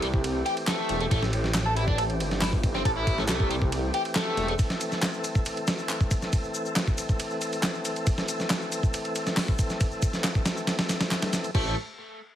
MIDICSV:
0, 0, Header, 1, 5, 480
1, 0, Start_track
1, 0, Key_signature, 0, "minor"
1, 0, Tempo, 434783
1, 1228, Time_signature, 4, 2, 24, 8
1, 13637, End_track
2, 0, Start_track
2, 0, Title_t, "Tonewheel organ"
2, 0, Program_c, 0, 16
2, 0, Note_on_c, 0, 52, 62
2, 0, Note_on_c, 0, 57, 61
2, 0, Note_on_c, 0, 60, 60
2, 0, Note_on_c, 0, 67, 72
2, 5024, Note_off_c, 0, 67, 0
2, 5067, Note_on_c, 0, 69, 72
2, 12703, Note_off_c, 0, 60, 0
2, 12703, Note_off_c, 0, 69, 0
2, 12704, Note_off_c, 0, 52, 0
2, 12705, Note_off_c, 0, 57, 0
2, 12746, Note_on_c, 0, 57, 60
2, 12746, Note_on_c, 0, 67, 69
2, 12747, Note_on_c, 0, 52, 67
2, 12747, Note_on_c, 0, 60, 60
2, 12970, Note_off_c, 0, 57, 0
2, 12970, Note_off_c, 0, 67, 0
2, 12971, Note_off_c, 0, 52, 0
2, 12971, Note_off_c, 0, 60, 0
2, 13637, End_track
3, 0, Start_track
3, 0, Title_t, "Overdriven electric guitar"
3, 0, Program_c, 1, 29
3, 25, Note_on_c, 1, 55, 100
3, 74, Note_off_c, 1, 55, 0
3, 504, Note_on_c, 1, 67, 77
3, 585, Note_off_c, 1, 67, 0
3, 746, Note_on_c, 1, 57, 80
3, 1095, Note_off_c, 1, 57, 0
3, 1108, Note_on_c, 1, 57, 75
3, 1154, Note_off_c, 1, 57, 0
3, 1223, Note_on_c, 1, 57, 81
3, 1343, Note_off_c, 1, 57, 0
3, 1829, Note_on_c, 1, 69, 76
3, 1905, Note_off_c, 1, 69, 0
3, 1946, Note_on_c, 1, 64, 100
3, 2026, Note_off_c, 1, 64, 0
3, 2068, Note_on_c, 1, 62, 101
3, 2174, Note_off_c, 1, 62, 0
3, 2186, Note_on_c, 1, 69, 82
3, 2234, Note_off_c, 1, 69, 0
3, 2668, Note_on_c, 1, 64, 82
3, 2747, Note_off_c, 1, 64, 0
3, 3031, Note_on_c, 1, 60, 96
3, 3106, Note_off_c, 1, 60, 0
3, 3150, Note_on_c, 1, 69, 81
3, 3196, Note_off_c, 1, 69, 0
3, 3270, Note_on_c, 1, 64, 99
3, 3498, Note_off_c, 1, 64, 0
3, 3511, Note_on_c, 1, 57, 73
3, 3556, Note_off_c, 1, 57, 0
3, 3629, Note_on_c, 1, 57, 79
3, 3857, Note_off_c, 1, 57, 0
3, 3869, Note_on_c, 1, 55, 95
3, 3916, Note_off_c, 1, 55, 0
3, 4350, Note_on_c, 1, 67, 75
3, 4428, Note_off_c, 1, 67, 0
3, 4587, Note_on_c, 1, 57, 77
3, 4938, Note_off_c, 1, 57, 0
3, 4952, Note_on_c, 1, 57, 72
3, 4997, Note_off_c, 1, 57, 0
3, 12749, Note_on_c, 1, 57, 92
3, 12971, Note_off_c, 1, 57, 0
3, 13637, End_track
4, 0, Start_track
4, 0, Title_t, "Detuned saw bass"
4, 0, Program_c, 2, 39
4, 0, Note_on_c, 2, 36, 83
4, 470, Note_off_c, 2, 36, 0
4, 988, Note_on_c, 2, 28, 85
4, 1181, Note_off_c, 2, 28, 0
4, 1229, Note_on_c, 2, 33, 99
4, 2431, Note_on_c, 2, 31, 85
4, 2447, Note_off_c, 2, 33, 0
4, 3112, Note_off_c, 2, 31, 0
4, 3150, Note_on_c, 2, 33, 97
4, 3627, Note_on_c, 2, 36, 84
4, 3644, Note_off_c, 2, 33, 0
4, 4310, Note_off_c, 2, 36, 0
4, 4826, Note_on_c, 2, 28, 92
4, 5021, Note_off_c, 2, 28, 0
4, 12749, Note_on_c, 2, 33, 95
4, 12971, Note_off_c, 2, 33, 0
4, 13637, End_track
5, 0, Start_track
5, 0, Title_t, "Drums"
5, 26, Note_on_c, 9, 51, 69
5, 136, Note_off_c, 9, 51, 0
5, 150, Note_on_c, 9, 36, 94
5, 261, Note_off_c, 9, 36, 0
5, 266, Note_on_c, 9, 51, 89
5, 377, Note_off_c, 9, 51, 0
5, 507, Note_on_c, 9, 51, 66
5, 617, Note_off_c, 9, 51, 0
5, 629, Note_on_c, 9, 51, 45
5, 739, Note_off_c, 9, 51, 0
5, 744, Note_on_c, 9, 39, 105
5, 746, Note_on_c, 9, 38, 118
5, 746, Note_on_c, 9, 51, 86
5, 854, Note_off_c, 9, 39, 0
5, 856, Note_off_c, 9, 38, 0
5, 856, Note_off_c, 9, 51, 0
5, 985, Note_on_c, 9, 51, 67
5, 1095, Note_off_c, 9, 51, 0
5, 1110, Note_on_c, 9, 51, 41
5, 1220, Note_off_c, 9, 51, 0
5, 1228, Note_on_c, 9, 36, 101
5, 1229, Note_on_c, 9, 51, 83
5, 1338, Note_off_c, 9, 36, 0
5, 1339, Note_off_c, 9, 51, 0
5, 1353, Note_on_c, 9, 38, 54
5, 1464, Note_off_c, 9, 38, 0
5, 1468, Note_on_c, 9, 51, 67
5, 1578, Note_off_c, 9, 51, 0
5, 1591, Note_on_c, 9, 38, 41
5, 1701, Note_off_c, 9, 38, 0
5, 1705, Note_on_c, 9, 39, 112
5, 1707, Note_on_c, 9, 38, 113
5, 1707, Note_on_c, 9, 51, 87
5, 1815, Note_off_c, 9, 39, 0
5, 1818, Note_off_c, 9, 38, 0
5, 1818, Note_off_c, 9, 51, 0
5, 1949, Note_on_c, 9, 51, 69
5, 2059, Note_off_c, 9, 51, 0
5, 2073, Note_on_c, 9, 36, 94
5, 2183, Note_off_c, 9, 36, 0
5, 2190, Note_on_c, 9, 51, 87
5, 2300, Note_off_c, 9, 51, 0
5, 2316, Note_on_c, 9, 51, 42
5, 2426, Note_off_c, 9, 51, 0
5, 2433, Note_on_c, 9, 51, 63
5, 2544, Note_off_c, 9, 51, 0
5, 2555, Note_on_c, 9, 38, 47
5, 2665, Note_off_c, 9, 38, 0
5, 2666, Note_on_c, 9, 39, 111
5, 2670, Note_on_c, 9, 38, 119
5, 2670, Note_on_c, 9, 46, 78
5, 2776, Note_off_c, 9, 39, 0
5, 2780, Note_off_c, 9, 38, 0
5, 2780, Note_off_c, 9, 46, 0
5, 2792, Note_on_c, 9, 36, 94
5, 2903, Note_off_c, 9, 36, 0
5, 2909, Note_on_c, 9, 36, 95
5, 2909, Note_on_c, 9, 51, 70
5, 3019, Note_off_c, 9, 51, 0
5, 3020, Note_off_c, 9, 36, 0
5, 3033, Note_on_c, 9, 38, 34
5, 3143, Note_off_c, 9, 38, 0
5, 3149, Note_on_c, 9, 36, 99
5, 3150, Note_on_c, 9, 51, 81
5, 3260, Note_off_c, 9, 36, 0
5, 3260, Note_off_c, 9, 51, 0
5, 3390, Note_on_c, 9, 36, 95
5, 3390, Note_on_c, 9, 51, 73
5, 3500, Note_off_c, 9, 36, 0
5, 3500, Note_off_c, 9, 51, 0
5, 3514, Note_on_c, 9, 38, 39
5, 3625, Note_off_c, 9, 38, 0
5, 3626, Note_on_c, 9, 39, 106
5, 3629, Note_on_c, 9, 38, 109
5, 3629, Note_on_c, 9, 51, 84
5, 3736, Note_off_c, 9, 39, 0
5, 3740, Note_off_c, 9, 38, 0
5, 3740, Note_off_c, 9, 51, 0
5, 3753, Note_on_c, 9, 36, 91
5, 3863, Note_off_c, 9, 36, 0
5, 3870, Note_on_c, 9, 51, 68
5, 3981, Note_off_c, 9, 51, 0
5, 3993, Note_on_c, 9, 36, 87
5, 4103, Note_off_c, 9, 36, 0
5, 4110, Note_on_c, 9, 51, 86
5, 4220, Note_off_c, 9, 51, 0
5, 4348, Note_on_c, 9, 51, 62
5, 4459, Note_off_c, 9, 51, 0
5, 4473, Note_on_c, 9, 51, 42
5, 4583, Note_on_c, 9, 39, 106
5, 4584, Note_off_c, 9, 51, 0
5, 4588, Note_on_c, 9, 38, 115
5, 4588, Note_on_c, 9, 51, 89
5, 4694, Note_off_c, 9, 39, 0
5, 4698, Note_off_c, 9, 38, 0
5, 4698, Note_off_c, 9, 51, 0
5, 4828, Note_on_c, 9, 51, 64
5, 4939, Note_off_c, 9, 51, 0
5, 4950, Note_on_c, 9, 51, 41
5, 5061, Note_off_c, 9, 51, 0
5, 5065, Note_on_c, 9, 82, 40
5, 5068, Note_on_c, 9, 36, 105
5, 5069, Note_on_c, 9, 51, 79
5, 5176, Note_off_c, 9, 82, 0
5, 5178, Note_off_c, 9, 36, 0
5, 5179, Note_off_c, 9, 51, 0
5, 5190, Note_on_c, 9, 38, 54
5, 5191, Note_on_c, 9, 82, 20
5, 5301, Note_off_c, 9, 38, 0
5, 5302, Note_off_c, 9, 82, 0
5, 5306, Note_on_c, 9, 82, 71
5, 5307, Note_on_c, 9, 51, 69
5, 5417, Note_off_c, 9, 82, 0
5, 5418, Note_off_c, 9, 51, 0
5, 5430, Note_on_c, 9, 82, 30
5, 5432, Note_on_c, 9, 38, 38
5, 5541, Note_off_c, 9, 82, 0
5, 5543, Note_off_c, 9, 38, 0
5, 5546, Note_on_c, 9, 39, 109
5, 5546, Note_on_c, 9, 82, 40
5, 5548, Note_on_c, 9, 38, 118
5, 5548, Note_on_c, 9, 51, 88
5, 5657, Note_off_c, 9, 39, 0
5, 5657, Note_off_c, 9, 82, 0
5, 5658, Note_off_c, 9, 38, 0
5, 5658, Note_off_c, 9, 51, 0
5, 5670, Note_on_c, 9, 82, 19
5, 5781, Note_off_c, 9, 82, 0
5, 5786, Note_on_c, 9, 82, 66
5, 5787, Note_on_c, 9, 51, 68
5, 5897, Note_off_c, 9, 51, 0
5, 5897, Note_off_c, 9, 82, 0
5, 5908, Note_on_c, 9, 82, 32
5, 5910, Note_on_c, 9, 36, 88
5, 6019, Note_off_c, 9, 82, 0
5, 6021, Note_off_c, 9, 36, 0
5, 6024, Note_on_c, 9, 82, 41
5, 6028, Note_on_c, 9, 51, 87
5, 6135, Note_off_c, 9, 82, 0
5, 6139, Note_off_c, 9, 51, 0
5, 6146, Note_on_c, 9, 82, 19
5, 6152, Note_on_c, 9, 51, 41
5, 6256, Note_off_c, 9, 82, 0
5, 6262, Note_off_c, 9, 51, 0
5, 6264, Note_on_c, 9, 82, 68
5, 6267, Note_on_c, 9, 38, 101
5, 6267, Note_on_c, 9, 51, 80
5, 6374, Note_off_c, 9, 82, 0
5, 6377, Note_off_c, 9, 38, 0
5, 6377, Note_off_c, 9, 51, 0
5, 6389, Note_on_c, 9, 82, 30
5, 6499, Note_off_c, 9, 82, 0
5, 6506, Note_on_c, 9, 39, 106
5, 6506, Note_on_c, 9, 82, 39
5, 6507, Note_on_c, 9, 51, 64
5, 6616, Note_off_c, 9, 39, 0
5, 6616, Note_off_c, 9, 82, 0
5, 6617, Note_off_c, 9, 51, 0
5, 6629, Note_on_c, 9, 82, 19
5, 6631, Note_on_c, 9, 36, 84
5, 6739, Note_off_c, 9, 82, 0
5, 6741, Note_off_c, 9, 36, 0
5, 6745, Note_on_c, 9, 82, 69
5, 6747, Note_on_c, 9, 36, 94
5, 6748, Note_on_c, 9, 51, 66
5, 6855, Note_off_c, 9, 82, 0
5, 6858, Note_off_c, 9, 36, 0
5, 6858, Note_off_c, 9, 51, 0
5, 6868, Note_on_c, 9, 82, 29
5, 6872, Note_on_c, 9, 38, 35
5, 6978, Note_off_c, 9, 82, 0
5, 6982, Note_off_c, 9, 38, 0
5, 6985, Note_on_c, 9, 82, 38
5, 6986, Note_on_c, 9, 51, 84
5, 6987, Note_on_c, 9, 36, 101
5, 7096, Note_off_c, 9, 82, 0
5, 7097, Note_off_c, 9, 51, 0
5, 7098, Note_off_c, 9, 36, 0
5, 7109, Note_on_c, 9, 82, 19
5, 7219, Note_off_c, 9, 82, 0
5, 7225, Note_on_c, 9, 82, 70
5, 7335, Note_off_c, 9, 82, 0
5, 7349, Note_on_c, 9, 82, 30
5, 7459, Note_off_c, 9, 82, 0
5, 7465, Note_on_c, 9, 38, 117
5, 7465, Note_on_c, 9, 51, 87
5, 7466, Note_on_c, 9, 39, 102
5, 7466, Note_on_c, 9, 82, 39
5, 7575, Note_off_c, 9, 38, 0
5, 7575, Note_off_c, 9, 51, 0
5, 7576, Note_off_c, 9, 39, 0
5, 7576, Note_off_c, 9, 82, 0
5, 7590, Note_on_c, 9, 36, 92
5, 7590, Note_on_c, 9, 82, 19
5, 7700, Note_off_c, 9, 36, 0
5, 7700, Note_off_c, 9, 82, 0
5, 7704, Note_on_c, 9, 82, 67
5, 7705, Note_on_c, 9, 51, 70
5, 7815, Note_off_c, 9, 82, 0
5, 7816, Note_off_c, 9, 51, 0
5, 7828, Note_on_c, 9, 82, 31
5, 7829, Note_on_c, 9, 36, 90
5, 7939, Note_off_c, 9, 82, 0
5, 7940, Note_off_c, 9, 36, 0
5, 7944, Note_on_c, 9, 82, 42
5, 7945, Note_on_c, 9, 51, 86
5, 8054, Note_off_c, 9, 82, 0
5, 8055, Note_off_c, 9, 51, 0
5, 8068, Note_on_c, 9, 82, 19
5, 8178, Note_off_c, 9, 82, 0
5, 8185, Note_on_c, 9, 82, 66
5, 8187, Note_on_c, 9, 51, 67
5, 8296, Note_off_c, 9, 82, 0
5, 8297, Note_off_c, 9, 51, 0
5, 8308, Note_on_c, 9, 82, 32
5, 8311, Note_on_c, 9, 51, 43
5, 8419, Note_off_c, 9, 82, 0
5, 8421, Note_off_c, 9, 51, 0
5, 8425, Note_on_c, 9, 38, 118
5, 8425, Note_on_c, 9, 39, 102
5, 8425, Note_on_c, 9, 51, 90
5, 8425, Note_on_c, 9, 82, 42
5, 8535, Note_off_c, 9, 38, 0
5, 8535, Note_off_c, 9, 39, 0
5, 8535, Note_off_c, 9, 51, 0
5, 8535, Note_off_c, 9, 82, 0
5, 8551, Note_on_c, 9, 82, 18
5, 8661, Note_off_c, 9, 82, 0
5, 8666, Note_on_c, 9, 82, 68
5, 8667, Note_on_c, 9, 51, 67
5, 8776, Note_off_c, 9, 82, 0
5, 8777, Note_off_c, 9, 51, 0
5, 8789, Note_on_c, 9, 82, 30
5, 8791, Note_on_c, 9, 51, 42
5, 8900, Note_off_c, 9, 82, 0
5, 8902, Note_off_c, 9, 51, 0
5, 8904, Note_on_c, 9, 82, 40
5, 8906, Note_on_c, 9, 51, 82
5, 8908, Note_on_c, 9, 36, 102
5, 9014, Note_off_c, 9, 82, 0
5, 9016, Note_off_c, 9, 51, 0
5, 9018, Note_off_c, 9, 36, 0
5, 9029, Note_on_c, 9, 82, 19
5, 9030, Note_on_c, 9, 38, 52
5, 9140, Note_off_c, 9, 38, 0
5, 9140, Note_off_c, 9, 82, 0
5, 9146, Note_on_c, 9, 51, 66
5, 9147, Note_on_c, 9, 82, 77
5, 9257, Note_off_c, 9, 51, 0
5, 9257, Note_off_c, 9, 82, 0
5, 9271, Note_on_c, 9, 82, 30
5, 9272, Note_on_c, 9, 38, 40
5, 9381, Note_off_c, 9, 82, 0
5, 9383, Note_off_c, 9, 38, 0
5, 9386, Note_on_c, 9, 38, 119
5, 9386, Note_on_c, 9, 39, 101
5, 9386, Note_on_c, 9, 51, 83
5, 9386, Note_on_c, 9, 82, 43
5, 9497, Note_off_c, 9, 38, 0
5, 9497, Note_off_c, 9, 39, 0
5, 9497, Note_off_c, 9, 51, 0
5, 9497, Note_off_c, 9, 82, 0
5, 9511, Note_on_c, 9, 82, 20
5, 9622, Note_off_c, 9, 82, 0
5, 9628, Note_on_c, 9, 51, 68
5, 9628, Note_on_c, 9, 82, 70
5, 9738, Note_off_c, 9, 51, 0
5, 9738, Note_off_c, 9, 82, 0
5, 9751, Note_on_c, 9, 36, 93
5, 9751, Note_on_c, 9, 82, 33
5, 9861, Note_off_c, 9, 82, 0
5, 9862, Note_off_c, 9, 36, 0
5, 9867, Note_on_c, 9, 82, 44
5, 9869, Note_on_c, 9, 51, 91
5, 9978, Note_off_c, 9, 82, 0
5, 9979, Note_off_c, 9, 51, 0
5, 9990, Note_on_c, 9, 82, 20
5, 9991, Note_on_c, 9, 51, 42
5, 10100, Note_off_c, 9, 82, 0
5, 10102, Note_off_c, 9, 51, 0
5, 10106, Note_on_c, 9, 82, 71
5, 10108, Note_on_c, 9, 51, 69
5, 10216, Note_off_c, 9, 82, 0
5, 10218, Note_off_c, 9, 51, 0
5, 10229, Note_on_c, 9, 82, 30
5, 10230, Note_on_c, 9, 38, 50
5, 10339, Note_off_c, 9, 82, 0
5, 10341, Note_off_c, 9, 38, 0
5, 10344, Note_on_c, 9, 38, 123
5, 10344, Note_on_c, 9, 46, 84
5, 10345, Note_on_c, 9, 39, 99
5, 10345, Note_on_c, 9, 82, 41
5, 10454, Note_off_c, 9, 38, 0
5, 10454, Note_off_c, 9, 46, 0
5, 10455, Note_off_c, 9, 39, 0
5, 10455, Note_off_c, 9, 82, 0
5, 10469, Note_on_c, 9, 82, 20
5, 10470, Note_on_c, 9, 36, 94
5, 10579, Note_off_c, 9, 82, 0
5, 10581, Note_off_c, 9, 36, 0
5, 10584, Note_on_c, 9, 51, 68
5, 10586, Note_on_c, 9, 36, 95
5, 10586, Note_on_c, 9, 82, 71
5, 10695, Note_off_c, 9, 51, 0
5, 10696, Note_off_c, 9, 82, 0
5, 10697, Note_off_c, 9, 36, 0
5, 10707, Note_on_c, 9, 82, 29
5, 10710, Note_on_c, 9, 38, 35
5, 10818, Note_off_c, 9, 82, 0
5, 10820, Note_off_c, 9, 38, 0
5, 10825, Note_on_c, 9, 82, 42
5, 10826, Note_on_c, 9, 51, 81
5, 10827, Note_on_c, 9, 36, 100
5, 10935, Note_off_c, 9, 82, 0
5, 10936, Note_off_c, 9, 51, 0
5, 10938, Note_off_c, 9, 36, 0
5, 10948, Note_on_c, 9, 82, 20
5, 11058, Note_off_c, 9, 82, 0
5, 11064, Note_on_c, 9, 82, 77
5, 11066, Note_on_c, 9, 51, 68
5, 11067, Note_on_c, 9, 36, 99
5, 11174, Note_off_c, 9, 82, 0
5, 11177, Note_off_c, 9, 51, 0
5, 11178, Note_off_c, 9, 36, 0
5, 11188, Note_on_c, 9, 38, 42
5, 11190, Note_on_c, 9, 82, 31
5, 11298, Note_off_c, 9, 38, 0
5, 11300, Note_off_c, 9, 82, 0
5, 11304, Note_on_c, 9, 38, 115
5, 11304, Note_on_c, 9, 51, 89
5, 11306, Note_on_c, 9, 39, 101
5, 11306, Note_on_c, 9, 82, 41
5, 11414, Note_off_c, 9, 38, 0
5, 11414, Note_off_c, 9, 51, 0
5, 11417, Note_off_c, 9, 39, 0
5, 11417, Note_off_c, 9, 82, 0
5, 11429, Note_on_c, 9, 36, 97
5, 11432, Note_on_c, 9, 82, 22
5, 11540, Note_off_c, 9, 36, 0
5, 11543, Note_off_c, 9, 82, 0
5, 11543, Note_on_c, 9, 38, 106
5, 11543, Note_on_c, 9, 51, 81
5, 11547, Note_on_c, 9, 82, 71
5, 11653, Note_off_c, 9, 38, 0
5, 11653, Note_off_c, 9, 51, 0
5, 11657, Note_off_c, 9, 82, 0
5, 11672, Note_on_c, 9, 82, 33
5, 11782, Note_off_c, 9, 82, 0
5, 11783, Note_on_c, 9, 38, 104
5, 11783, Note_on_c, 9, 51, 79
5, 11788, Note_on_c, 9, 82, 46
5, 11893, Note_off_c, 9, 38, 0
5, 11893, Note_off_c, 9, 51, 0
5, 11899, Note_off_c, 9, 82, 0
5, 11909, Note_on_c, 9, 38, 100
5, 11909, Note_on_c, 9, 51, 77
5, 11911, Note_on_c, 9, 82, 19
5, 12019, Note_off_c, 9, 38, 0
5, 12019, Note_off_c, 9, 51, 0
5, 12022, Note_off_c, 9, 82, 0
5, 12027, Note_on_c, 9, 38, 98
5, 12027, Note_on_c, 9, 51, 79
5, 12027, Note_on_c, 9, 82, 73
5, 12137, Note_off_c, 9, 38, 0
5, 12137, Note_off_c, 9, 51, 0
5, 12138, Note_off_c, 9, 82, 0
5, 12150, Note_on_c, 9, 38, 101
5, 12150, Note_on_c, 9, 51, 83
5, 12152, Note_on_c, 9, 82, 33
5, 12260, Note_off_c, 9, 38, 0
5, 12260, Note_off_c, 9, 51, 0
5, 12263, Note_off_c, 9, 82, 0
5, 12269, Note_on_c, 9, 38, 111
5, 12269, Note_on_c, 9, 39, 99
5, 12269, Note_on_c, 9, 51, 76
5, 12269, Note_on_c, 9, 82, 41
5, 12379, Note_off_c, 9, 38, 0
5, 12379, Note_off_c, 9, 39, 0
5, 12379, Note_off_c, 9, 51, 0
5, 12379, Note_off_c, 9, 82, 0
5, 12391, Note_on_c, 9, 38, 103
5, 12391, Note_on_c, 9, 51, 80
5, 12391, Note_on_c, 9, 82, 20
5, 12501, Note_off_c, 9, 82, 0
5, 12502, Note_off_c, 9, 38, 0
5, 12502, Note_off_c, 9, 51, 0
5, 12509, Note_on_c, 9, 38, 99
5, 12509, Note_on_c, 9, 51, 77
5, 12509, Note_on_c, 9, 82, 73
5, 12619, Note_off_c, 9, 38, 0
5, 12619, Note_off_c, 9, 51, 0
5, 12620, Note_off_c, 9, 82, 0
5, 12633, Note_on_c, 9, 51, 40
5, 12634, Note_on_c, 9, 82, 31
5, 12743, Note_off_c, 9, 51, 0
5, 12744, Note_off_c, 9, 82, 0
5, 12748, Note_on_c, 9, 49, 79
5, 12749, Note_on_c, 9, 36, 106
5, 12858, Note_off_c, 9, 49, 0
5, 12859, Note_off_c, 9, 36, 0
5, 13637, End_track
0, 0, End_of_file